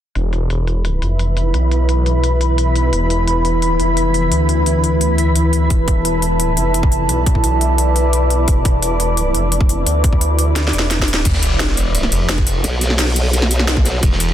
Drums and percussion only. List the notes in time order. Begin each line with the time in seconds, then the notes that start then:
0.15 closed hi-hat
0.33 closed hi-hat
0.50 closed hi-hat
0.67 closed hi-hat
0.85 closed hi-hat
1.02 closed hi-hat
1.19 closed hi-hat
1.37 closed hi-hat
1.54 closed hi-hat
1.72 closed hi-hat
1.89 closed hi-hat
2.06 closed hi-hat
2.24 closed hi-hat
2.41 closed hi-hat
2.58 closed hi-hat
2.76 closed hi-hat
2.93 closed hi-hat
3.10 closed hi-hat
3.28 closed hi-hat
3.45 closed hi-hat
3.62 closed hi-hat
3.80 closed hi-hat
3.97 closed hi-hat
4.14 closed hi-hat
4.32 closed hi-hat
4.49 closed hi-hat
4.66 closed hi-hat
4.84 closed hi-hat
5.01 closed hi-hat
5.18 closed hi-hat
5.36 closed hi-hat
5.53 closed hi-hat
5.70 kick, closed hi-hat
5.88 kick, closed hi-hat
6.05 closed hi-hat
6.22 closed hi-hat
6.40 closed hi-hat
6.57 closed hi-hat
6.74 closed hi-hat
6.83 kick
6.92 closed hi-hat
7.09 closed hi-hat
7.26 kick, closed hi-hat
7.35 kick
7.44 closed hi-hat
7.61 closed hi-hat
7.78 closed hi-hat
7.96 closed hi-hat
8.13 closed hi-hat
8.30 closed hi-hat
8.48 kick, closed hi-hat
8.65 kick, closed hi-hat
8.83 closed hi-hat
9.00 closed hi-hat
9.17 closed hi-hat
9.35 closed hi-hat
9.52 closed hi-hat
9.61 kick
9.69 closed hi-hat
9.87 closed hi-hat
10.04 kick, closed hi-hat
10.13 kick
10.21 closed hi-hat
10.39 closed hi-hat
10.56 snare, closed hi-hat
10.68 snare
10.73 closed hi-hat
10.79 snare
10.91 snare, closed hi-hat
10.99 kick, snare
11.08 closed hi-hat
11.14 snare
11.25 kick, closed hi-hat, crash, ride
11.33 snare
11.43 closed hi-hat, ride
11.51 ride
11.59 snare, closed hi-hat, ride
11.69 snare
11.77 closed hi-hat, ride
11.95 closed hi-hat, ride
12.03 snare, ride
12.12 closed hi-hat, ride
12.29 snare, closed hi-hat, ride
12.38 kick
12.47 closed hi-hat, ride
12.64 closed hi-hat, ride
12.81 snare, closed hi-hat, ride
12.90 snare
12.98 snare, closed hi-hat, open hi-hat
13.16 closed hi-hat, ride
13.33 closed hi-hat, ride
13.42 snare
13.51 closed hi-hat, ride
13.59 snare
13.68 snare, closed hi-hat, ride
13.77 kick, snare
13.85 snare, closed hi-hat, ride
14.03 kick, closed hi-hat, ride
14.12 snare
14.20 closed hi-hat, ride
14.28 ride